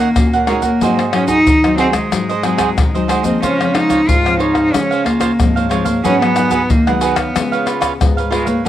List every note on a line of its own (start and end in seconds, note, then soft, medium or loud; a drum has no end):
0.00 0.13 D#3 medium
0.00 0.11 A#3 soft
0.00 0.44 A#3 medium
0.00 0.11 C#4 soft
0.00 0.11 F#4 medium
0.16 0.79 A#2 medium
0.16 0.36 A#3 medium
0.16 0.36 C#4 medium
0.16 0.36 F#4 medium
0.16 pandeiro medium
0.16 tamborim medium
0.16 shaker medium
0.16 surdo medium
0.33 0.47 A#4 soft
0.33 0.47 C#5 soft
0.33 0.48 F#5 medium
0.33 pandeiro soft
0.33 shaker soft
0.47 0.62 G#3 medium
0.47 0.69 A#3 medium
0.47 0.70 C#4 medium
0.47 0.63 D#4 medium
0.47 0.70 F#4 medium
0.47 0.63 A#4 medium
0.47 0.62 C#5 medium
0.47 0.61 F#5 medium
0.47 pandeiro medium
0.47 tamborim medium
0.62 1.09 A#3 medium
0.62 0.80 A#4 soft
0.62 0.79 C#5 soft
0.62 0.79 F#5 medium
0.62 pandeiro medium
0.62 shaker medium
0.62 surdo soft
0.81 1.44 G#2 medium
0.81 1.01 F#3 medium
0.81 1.01 C4 medium
0.81 1.01 D#4 medium
0.81 1.11 F#4 medium
0.81 1.12 G#4 medium
0.81 1.13 C5 medium
0.81 1.13 D#5 medium
0.81 pandeiro medium
0.81 shaker medium
0.81 surdo medium
0.99 pandeiro soft
0.99 tamborim medium
0.99 shaker soft
1.13 1.44 F#3 medium
1.13 1.45 C4 medium
1.13 1.27 C#4 medium
1.13 1.45 D#4 medium
1.13 1.27 F#4 soft
1.13 1.27 G#4 soft
1.13 1.27 C5 medium
1.13 1.28 D#5 soft
1.13 pandeiro medium
1.13 tamborim medium
1.27 1.75 D#4 loud
1.27 1.38 F#4 medium
1.27 1.39 G#4 medium
1.27 1.39 C5 medium
1.27 1.39 D#5 medium
1.27 pandeiro medium
1.27 shaker medium
1.27 surdo soft
1.47 2.09 D#3 medium
1.47 pandeiro medium
1.47 shaker medium
1.47 surdo medium
1.64 2.08 F#3 medium
1.64 2.08 C4 medium
1.64 2.08 D#4 medium
1.64 1.77 G#4 soft
1.64 1.78 C5 soft
1.64 1.78 D#5 soft
1.64 pandeiro soft
1.64 tamborim medium
1.64 shaker soft
1.78 1.93 C4 medium
1.78 1.94 F#4 medium
1.78 1.94 G#4 medium
1.78 1.93 C5 medium
1.78 1.92 D#5 medium
1.78 pandeiro medium
1.93 3.05 G#3 medium
1.93 2.27 G#4 soft
1.93 2.27 C5 soft
1.93 2.26 D#5 soft
1.93 pandeiro medium
1.93 tamborim medium
1.93 shaker medium
1.93 surdo soft
2.12 2.74 G#2 medium
2.12 2.32 F#3 medium
2.12 2.32 C4 medium
2.12 2.32 D#4 medium
2.12 pandeiro medium
2.12 tamborim medium
2.12 shaker medium
2.12 surdo medium
2.29 2.43 G#4 medium
2.29 2.43 C5 medium
2.29 2.44 D#5 medium
2.29 pandeiro soft
2.29 shaker soft
2.43 2.88 F#3 medium
2.43 2.89 C4 medium
2.43 2.89 D#4 medium
2.43 2.57 F#4 soft
2.43 2.57 G#4 soft
2.43 2.57 C5 soft
2.43 2.58 D#5 medium
2.43 pandeiro medium
2.43 tamborim medium
2.43 shaker medium
2.58 2.69 F#4 medium
2.58 2.69 G#4 medium
2.58 2.69 C5 medium
2.58 2.69 D#5 medium
2.58 pandeiro medium
2.58 tamborim medium
2.58 shaker medium
2.58 surdo soft
2.78 3.40 D#3 medium
2.78 pandeiro medium
2.78 tamborim medium
2.78 shaker medium
2.78 surdo medium
2.94 3.22 F#3 medium
2.94 3.22 C4 medium
2.94 3.22 D#4 medium
2.94 3.08 G#4 soft
2.94 3.08 C5 soft
2.94 3.09 D#5 medium
2.94 pandeiro soft
2.94 shaker soft
3.08 3.26 G#3 medium
3.08 3.24 F#4 medium
3.08 3.25 G#4 medium
3.08 3.23 C5 medium
3.08 3.22 D#5 medium
3.08 pandeiro medium
3.08 tamborim medium
3.08 shaker medium
3.24 3.59 F3 medium
3.24 3.60 G#3 medium
3.24 3.42 A#3 medium
3.24 3.60 C4 medium
3.24 3.41 G#4 soft
3.24 3.41 C5 soft
3.24 3.40 D#5 soft
3.24 pandeiro medium
3.24 shaker medium
3.24 surdo soft
3.42 4.05 C#3 medium
3.42 3.76 C#4 medium
3.42 3.73 F4 medium
3.42 3.73 C5 medium
3.42 3.74 C#5 medium
3.42 3.74 F5 medium
3.42 pandeiro medium
3.42 shaker medium
3.42 surdo medium
3.60 3.71 F3 medium
3.60 3.71 G#3 medium
3.60 3.72 C4 medium
3.60 pandeiro soft
3.60 tamborim medium
3.60 shaker soft
3.74 4.06 F3 medium
3.74 4.06 G#3 soft
3.74 4.06 C4 medium
3.74 4.10 D#4 medium
3.74 3.88 F4 soft
3.74 3.88 C5 medium
3.74 3.89 C#5 medium
3.74 3.89 F5 medium
3.74 pandeiro medium
3.74 tamborim medium
3.89 4.00 F4 medium
3.89 4.00 C5 medium
3.89 4.00 C#5 medium
3.89 4.00 F5 medium
3.89 pandeiro medium
3.89 shaker medium
3.89 surdo soft
4.08 4.70 G#2 medium
4.08 4.39 F4 loud
4.08 pandeiro medium
4.08 shaker medium
4.08 surdo medium
4.25 4.69 F3 medium
4.25 4.69 G#3 medium
4.25 4.70 C4 medium
4.25 4.38 C5 soft
4.25 4.39 C#5 soft
4.25 4.39 F5 soft
4.25 pandeiro soft
4.25 tamborim medium
4.25 shaker soft
4.39 4.75 D#4 medium
4.39 4.55 F4 medium
4.39 4.55 C5 medium
4.39 4.54 C#5 medium
4.39 4.53 F5 medium
4.39 pandeiro medium
4.54 4.88 C5 soft
4.54 4.87 F5 soft
4.54 pandeiro medium
4.54 tamborim medium
4.54 shaker medium
4.54 surdo soft
4.73 5.36 C#3 medium
4.73 5.16 F3 medium
4.73 5.16 G#3 medium
4.73 5.06 C#4 medium
4.73 pandeiro medium
4.73 tamborim medium
4.73 shaker medium
4.73 surdo medium
4.91 5.04 C5 medium
4.91 5.05 C#5 medium
4.91 5.05 F5 medium
4.91 pandeiro soft
4.91 shaker soft
5.04 5.70 A#3 medium
5.04 5.19 F4 soft
5.04 5.19 C5 medium
5.04 5.20 C#5 medium
5.04 5.20 F5 medium
5.04 pandeiro medium
5.04 tamborim medium
5.04 surdo soft
5.20 5.31 F4 medium
5.20 5.31 C5 medium
5.20 5.31 C#5 medium
5.20 5.31 F5 medium
5.20 pandeiro medium
5.20 tamborim medium
5.20 shaker medium
5.20 surdo soft
5.40 6.02 G#2 medium
5.40 5.67 F3 medium
5.40 5.67 G#3 medium
5.40 5.67 C4 medium
5.40 pandeiro medium
5.40 tamborim medium
5.40 shaker medium
5.40 surdo medium
5.56 5.69 C5 soft
5.56 5.70 C#5 soft
5.56 5.70 F5 medium
5.56 pandeiro soft
5.56 shaker soft
5.69 5.92 F3 medium
5.69 5.87 G#3 medium
5.69 5.93 G#3 medium
5.69 5.93 C4 medium
5.69 5.86 F4 medium
5.69 5.86 C5 medium
5.69 5.85 C#5 medium
5.69 5.84 F5 medium
5.69 pandeiro medium
5.69 tamborim medium
5.69 shaker medium
5.85 6.03 A#3 medium
5.85 6.03 C5 soft
5.85 6.02 C#5 soft
5.85 6.02 F5 soft
5.85 pandeiro medium
5.85 shaker medium
5.85 surdo soft
6.04 6.67 G#2 medium
6.04 6.16 F#3 medium
6.04 6.16 B3 medium
6.04 6.20 C#4 loud
6.04 6.16 D#4 medium
6.04 6.34 F#4 medium
6.04 6.35 G#4 medium
6.04 6.35 B4 medium
6.04 6.36 F#5 medium
6.04 pandeiro medium
6.04 shaker medium
6.04 surdo medium
6.22 6.33 F#3 medium
6.22 6.72 B3 medium
6.22 6.33 B3 medium
6.22 6.33 D#4 medium
6.22 pandeiro soft
6.22 tamborim medium
6.22 shaker soft
6.35 6.67 F#3 medium
6.35 6.67 B3 soft
6.35 6.68 D#4 medium
6.35 6.49 F#4 soft
6.35 6.50 G#4 medium
6.35 6.50 B4 soft
6.35 6.50 F#5 medium
6.35 pandeiro medium
6.35 tamborim medium
6.35 shaker medium
6.50 6.61 F#4 medium
6.50 6.61 G#4 medium
6.50 6.61 B4 medium
6.50 6.62 F#5 medium
6.50 pandeiro medium
6.50 shaker medium
6.50 surdo soft
6.70 7.32 D#3 medium
6.70 6.89 A#3 medium
6.70 pandeiro medium
6.70 shaker medium
6.70 surdo loud
6.87 7.30 F#3 medium
6.87 7.01 G#3 medium
6.87 7.31 B3 medium
6.87 7.31 D#4 medium
6.87 7.00 G#4 soft
6.87 7.01 B4 soft
6.87 7.01 F#5 soft
6.87 pandeiro soft
6.87 tamborim medium
6.87 shaker soft
7.01 7.96 B3 medium
7.01 7.17 F#4 medium
7.01 7.17 G#4 medium
7.01 7.16 B4 medium
7.01 7.15 F#5 medium
7.01 pandeiro medium
7.01 shaker medium
7.16 7.50 B4 soft
7.16 7.49 C#5 soft
7.16 7.49 F5 soft
7.16 pandeiro medium
7.16 tamborim medium
7.16 shaker medium
7.16 surdo soft
7.35 7.97 C#3 medium
7.35 7.95 G#3 medium
7.35 7.96 B3 soft
7.35 7.96 F4 soft
7.35 pandeiro medium
7.35 tamborim medium
7.35 shaker medium
7.35 surdo medium
7.52 7.65 B4 soft
7.52 7.66 C#5 medium
7.52 7.67 F5 medium
7.52 pandeiro soft
7.52 shaker soft
7.66 7.79 F4 medium
7.66 7.80 B4 medium
7.66 7.80 C#5 soft
7.66 7.81 F5 medium
7.66 pandeiro medium
7.66 tamborim medium
7.66 shaker medium
7.81 7.92 F4 medium
7.81 7.92 B4 medium
7.81 7.92 C#5 medium
7.81 7.92 F5 medium
7.81 pandeiro medium
7.81 tamborim medium
7.81 shaker medium
7.81 surdo soft
8.01 8.63 G#2 medium
8.01 8.20 G#3 medium
8.01 8.20 B3 medium
8.01 8.21 F4 medium
8.01 pandeiro medium
8.01 tamborim medium
8.01 shaker medium
8.01 surdo loud
8.17 8.30 B4 soft
8.17 8.31 C#5 soft
8.17 8.31 F5 soft
8.17 pandeiro soft
8.17 shaker soft
8.30 8.54 G#3 medium
8.30 8.49 G#3 medium
8.30 8.54 B3 medium
8.30 8.47 F4 medium
8.30 8.54 F4 medium
8.30 8.46 B4 medium
8.30 8.46 C#5 medium
8.30 8.45 F5 medium
8.30 pandeiro medium
8.30 tamborim medium
8.46 8.65 A#3 medium
8.46 8.64 B4 soft
8.46 8.63 C#5 soft
8.46 8.63 F5 medium
8.46 pandeiro medium
8.46 shaker medium
8.46 surdo soft
8.65 8.69 F#4 medium